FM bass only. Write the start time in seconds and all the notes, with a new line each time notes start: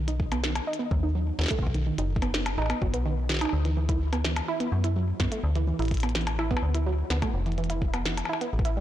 Already playing: B1
0.91 D#2
1.39 D#2
1.63 B1
1.98 F#1
2.58 A1
2.82 F#1
2.94 B1
3.53 D2
4.72 F#2
5.20 F#2
5.44 D2
5.79 A1
6.63 D2
7.10 D2
7.34 F1
8.53 A1